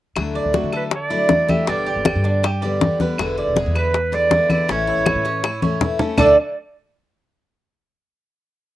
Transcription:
0.16 upright bass D2, steel-string acoustic guitar D3 F#3 A3 D4 E4, high bongo, high conga, claves
0.35 cuban tres D5, high conga
0.45 upright bass D2
0.53 steel-string acoustic guitar F#3 A3 D4 E4, cuban tres F#4, high bongo, high conga
0.64 upright bass D3
0.72 cuban tres A4, clarinet B4, high bongo, high conga, claves
0.91 muted steel-string acoustic guitar stroke, high bongo, high conga
0.95 clarinet D5
1.10 steel-string acoustic guitar F#3 A3 D4 E4, cuban tres D5, high bongo, high conga
1.29 steel-string acoustic guitar F#3 A3 D4, high bongo, low bongo, high conga
1.49 steel-string acoustic guitar F#3 A3 D4 E4, cuban tres G4, clarinet E5, high bongo, high conga, claves
1.67 upright bass G1, steel-string acoustic guitar B2 D3 G3 B3 G4, cuban tres D4, clarinet D5, high bongo, high conga
1.86 cuban tres G4, high conga
1.96 upright bass G1
2.05 steel-string acoustic guitar D3 G3 B3 G4, high bongo, high conga, claves
2.16 upright bass G2
2.24 cuban tres D4, high bongo, high conga
2.43 cuban tres G4, muted steel-string acoustic guitar stroke, high bongo, high conga, claves
2.62 steel-string acoustic guitar D3 G3 B3 G4, cuban tres D5, high bongo, high conga
2.81 steel-string acoustic guitar D3 G3 B3 G4, high bongo, low bongo, high conga
3.00 steel-string acoustic guitar D3 G3 B3 G4, cuban tres B4, high bongo, high conga
3.18 upright bass E1, steel-string acoustic guitar B2 D3 G#3 B3 E4, high bongo, high conga, claves
3.38 cuban tres D5, high conga
3.47 upright bass E1
3.56 steel-string acoustic guitar D3 G#3 B3 E4, cuban tres G#4, high bongo, high conga
3.66 upright bass E2
3.75 cuban tres B4, clarinet B4, high bongo, high conga, claves
3.94 muted steel-string acoustic guitar stroke, high bongo, high conga
4.12 steel-string acoustic guitar D3 G#3 B3 E4, cuban tres D5, clarinet D5, high bongo, high conga
4.31 steel-string acoustic guitar D3 G#3 B3 E4, high bongo, low bongo, high conga
4.50 steel-string acoustic guitar D3 G#3 B3 E4, cuban tres E4, clarinet D5, high bongo, high conga, claves
4.68 upright bass A1, steel-string acoustic guitar E3 A3 C#4 E4, cuban tres C#4, clarinet C#5, high bongo, high conga
4.87 cuban tres E4, high conga
4.97 upright bass A1
5.06 steel-string acoustic guitar E3 A3, high bongo, high conga, claves
5.15 upright bass A2
5.25 cuban tres C#4, high bongo, high conga
5.44 cuban tres E4, muted steel-string acoustic guitar stroke, high bongo, high conga, claves
5.62 steel-string acoustic guitar A3 C#4 E4, cuban tres C#5, high bongo, high conga
5.81 steel-string acoustic guitar E3 A3 C#4 E4, high bongo, low bongo, low conga
5.99 steel-string acoustic guitar A3 C#4 E4, cuban tres A4, high bongo, low conga
6.18 upright bass D2, steel-string acoustic guitar D3 F#3 A3 D4 E4, cuban tres D4 A4 D5, clarinet A4, low bongo, low conga, claves

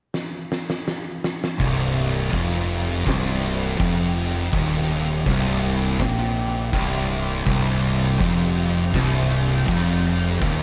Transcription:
0.14 snare
0.52 snare
0.70 snare
0.88 snare
1.24 snare
1.44 snare
1.58 fingered electric bass C1, distorted electric guitar C2, synth drone C3 C4 G4, kick, crash
1.98 crash
2.33 fingered electric bass F1, distorted electric guitar F2, kick, crash
2.72 crash
3.06 fingered electric bass C1, distorted electric guitar C2, kick, snare, crash
3.44 crash
3.80 fingered electric bass F1, distorted electric guitar F2, kick, crash
4.17 crash
4.53 fingered electric bass D#1, distorted electric guitar D#2, kick, crash
4.90 crash
5.26 fingered electric bass C1, distorted electric guitar C2, kick, snare, crash
5.63 crash
6.00 fingered electric bass A#1, distorted electric guitar A#2, kick, snare, crash
6.36 crash
6.72 fingered electric bass C1, distorted electric guitar C2, kick, crash
7.10 crash
7.46 fingered electric bass C1, distorted electric guitar C2, kick, crash
7.84 crash
8.21 fingered electric bass F1, distorted electric guitar F2, kick, snare, crash
8.58 crash
8.94 fingered electric bass C1, distorted electric guitar C2, kick, snare, crash
9.32 crash
9.67 fingered electric bass F1, distorted electric guitar F2, kick, crash
10.05 crash
10.40 fingered electric bass D#1, distorted electric guitar D#2, kick, crash

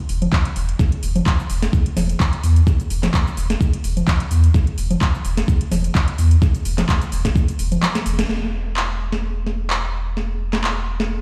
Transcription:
0.09 sub bass E1, open hi-hat
0.22 closed hi-hat, low conga
0.33 kick, clap
0.45 closed hi-hat
0.56 sub bass E1, open hi-hat
0.69 closed hi-hat
0.79 kick, snare, shaker
0.92 closed hi-hat
1.03 sub bass E1, open hi-hat, shaker
1.16 closed hi-hat, low conga, shaker
1.26 kick, clap, shaker
1.40 shaker
1.50 sub bass E1, open hi-hat, shaker
1.63 snare, closed hi-hat, shaker
1.73 kick, shaker
1.86 closed hi-hat
1.97 sub bass E1, snare, open hi-hat, low conga, shaker
2.10 closed hi-hat, shaker
2.20 kick, clap, shaker
2.33 closed hi-hat
2.43 sub bass E2, open hi-hat, shaker
2.56 closed hi-hat, shaker
2.67 kick, snare, shaker
2.80 closed hi-hat, shaker
2.90 sub bass E1, open hi-hat, shaker
3.03 snare, clap, closed hi-hat, low conga, shaker
3.14 kick, clap, shaker
3.27 shaker
3.37 sub bass E1, open hi-hat, shaker
3.50 snare, closed hi-hat, shaker
3.61 kick, shaker
3.73 closed hi-hat
3.84 sub bass E1, open hi-hat, shaker
3.97 closed hi-hat, low conga, shaker
4.08 kick, clap, shaker
4.20 closed hi-hat
4.31 sub bass E2, open hi-hat, shaker
4.44 closed hi-hat, shaker
4.54 kick, snare, shaker
4.67 closed hi-hat
4.78 sub bass E1, open hi-hat, shaker
4.91 closed hi-hat, low conga, shaker
5.01 kick, clap, shaker
5.15 shaker
5.25 sub bass E1, open hi-hat, shaker
5.37 snare, closed hi-hat, shaker
5.48 kick, shaker
5.61 closed hi-hat
5.71 sub bass E1, snare, open hi-hat, low conga, shaker
5.84 closed hi-hat, shaker
5.95 kick, clap, shaker
6.08 closed hi-hat
6.18 sub bass E2, open hi-hat, shaker
6.31 closed hi-hat, shaker
6.42 kick, snare, shaker
6.55 closed hi-hat, shaker
6.65 sub bass E1, open hi-hat, shaker
6.78 snare, clap, closed hi-hat, low conga, shaker
6.89 kick, clap, shaker
7.02 closed hi-hat, shaker
7.12 sub bass E1, open hi-hat, shaker
7.25 kick, snare, closed hi-hat, shaker
7.36 kick, shaker
7.48 closed hi-hat, shaker
7.59 sub bass E1, open hi-hat, shaker
7.72 closed hi-hat, low conga, shaker
7.82 clap, high tom, shaker
7.95 snare, closed hi-hat, shaker
8.06 sub bass E1, open hi-hat, shaker
8.19 snare, closed hi-hat, shaker
8.29 sub bass E1, snare
8.76 clap
9.12 snare
9.47 snare
9.70 clap
10.17 snare
10.53 snare, clap
10.64 clap
11.00 snare

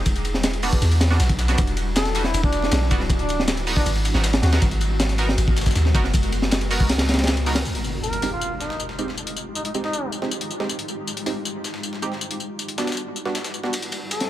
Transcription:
Already playing: 808-style bass E1
0.06 ambient pad G3 D4 E4 F#4, kick, ride, tambourine
0.16 closed hi-hat
0.25 ride, tambourine
0.34 snare
0.43 snare, ride, tambourine
0.53 closed hi-hat, ride
0.62 synth stab G3 B3 D4 F#4, open hi-hat, tambourine
0.73 kick, snare
0.82 808-style bass E2, snare, ride, tambourine
0.91 closed hi-hat, ride
1.01 snare, ride, tambourine
1.10 synth stab G3 B3 D4 F#4, snare
1.20 808-style bass B1, snare, ride, tambourine
1.29 kick, closed hi-hat
1.39 snare, ride, tambourine
1.48 synth stab G3 B3 D4 F#4, snare, tambourine
1.58 808-style bass E1, kick, ride, tambourine
1.67 closed hi-hat
1.77 ride, tambourine
1.96 muted trumpet A4, snare, ride, tambourine
2.05 snare, closed hi-hat
2.15 synth stab G3 B3 D4 F#4, open hi-hat, ride
2.24 muted trumpet E4, snare
2.34 808-style bass E1, ride, tambourine
2.43 muted trumpet D4, kick
2.52 snare, ride, tambourine
2.62 snare
2.71 808-style bass B1, snare, ride, tambourine
2.81 snare
2.91 808-style bass D1, synth stab G3 B3 D4 F#4, kick, ride, tambourine
3.00 snare
3.10 kick, ride, tambourine
3.19 muted trumpet D4, closed hi-hat
3.29 ride, tambourine
3.39 snare
3.48 snare, ride, tambourine
3.57 closed hi-hat, ride
3.67 synth stab B3 D#4 F#4 A#4, open hi-hat, tambourine
3.76 muted trumpet D4, kick, snare
3.86 808-style bass G#1, ambient pad G#3 B3 A#4, ride, tambourine
3.95 ride
4.05 ride, tambourine
4.14 808-style bass G#1, synth stab B3 D#4 F#4 A#4, snare
4.24 snare, ride, tambourine
4.33 snare, closed hi-hat
4.43 808-style bass D#2, muted trumpet F#4, snare, ride, tambourine
4.52 synth stab B3 D#4 F#4 A#4, muted trumpet F#4, snare, ride
4.62 808-style bass G#1, kick, ride, tambourine
4.71 closed hi-hat
4.81 ride, tambourine
5.00 snare, ride, tambourine
5.09 snare, closed hi-hat
5.18 synth stab B3 D#4 F#4 A#4, open hi-hat, ride
5.29 snare
5.38 808-style bass G#1, ride, tambourine
5.48 kick
5.57 snare, ride, tambourine
5.61 snare, tambourine
5.66 kick, snare, tambourine
5.71 snare, tambourine
5.75 808-style bass D#2, snare, ride, tambourine
5.85 snare
5.95 808-style bass F#1, synth stab B3 D#4 F#4 A#4, kick, ride, tambourine
6.04 snare
6.13 kick, ride, tambourine
6.23 closed hi-hat
6.32 ride, tambourine
6.42 snare
6.51 snare, ride, tambourine
6.61 closed hi-hat, ride
6.71 synth stab B3 D#4 F#4 A#4, open hi-hat, tambourine
6.80 kick, snare
6.89 808-style bass C#2, snare, ride, tambourine
6.98 snare, ride
7.08 snare, ride, tambourine
7.14 snare, ride
7.18 snare, ride
7.24 snare, ride
7.27 snare, ride, tambourine
7.37 closed hi-hat, ride
7.46 synth stab B3 D#4 F#4 A#4, snare, open hi-hat, tambourine
7.55 snare, ride
7.65 ambient pad G#3 D#4 F4 G4, tambourine, impact
7.75 closed hi-hat
7.84 tambourine
8.03 muted trumpet A#4, tambourine
8.13 closed hi-hat
8.22 synth stab G#3 C4 D#4 G4, open hi-hat
8.32 muted trumpet F4
8.41 tambourine
8.60 muted trumpet D#4, snare, tambourine
8.70 snare
8.80 tambourine
8.89 snare
8.98 synth stab G#3 C4 D#4 G4, tambourine
9.08 snare
9.17 tambourine
9.27 closed hi-hat
9.36 tambourine
9.55 muted trumpet D#4, tambourine
9.65 muted trumpet D#4, closed hi-hat
9.74 synth stab G#3 C4 D#4 G4, tambourine
9.83 muted trumpet D#4, snare
9.93 tambourine
10.12 tambourine
10.22 synth stab G#3 C4 D#4 G4, snare
10.31 tambourine
10.41 closed hi-hat
10.50 tambourine
10.60 synth stab G#3 C4 D#4 G4, snare
10.69 tambourine
10.79 closed hi-hat
10.88 tambourine
11.07 tambourine
11.17 closed hi-hat
11.26 synth stab G#3 C4 D#4 G4, open hi-hat
11.45 tambourine
11.64 snare, tambourine
11.74 snare
11.83 tambourine
11.93 snare
12.02 synth stab G#3 C4 D#4 G4, tambourine
12.12 snare
12.21 ambient pad G3 D4 E4 F#4, tambourine
12.31 closed hi-hat
12.40 tambourine
12.59 tambourine
12.68 closed hi-hat
12.78 synth stab G3 B3 D4 F#4, snare, tambourine
12.87 snare, tambourine
12.92 snare, tambourine
12.97 tambourine
13.16 tambourine
13.25 synth stab G3 B3 D4 F#4, snare
13.35 snare, tambourine
13.44 snare, tambourine
13.54 tambourine
13.63 synth stab G3 B3 D4 F#4, snare
13.73 ride, tambourine
13.82 closed hi-hat
13.92 ride, tambourine
14.11 muted trumpet A4, ride, tambourine
14.20 snare, closed hi-hat

